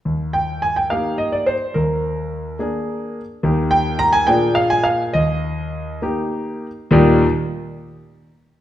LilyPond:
\new Staff \with { instrumentName = "Grand piano" } { \time 6/8 \key ees \major \tempo 4. = 70 << { r8 g''8 aes''16 g''16 f''8 ees''16 d''16 c''8 | bes'2~ bes'8 r8 | r8 g''8 bes''16 aes''16 g''8 f''16 aes''16 f''8 | ees''2~ ees''8 r8 |
<ees, bes, g bes ees' g'>8 r2 r8 | } \\ { ees,4. <bes ees' g'>4. | ees,4. <bes d' aes'>4. | <ees, bes ees' g'>4. <bes, bes d' aes'>4. | ees,4. <bes ees' g'>4. |
r2. | } >> }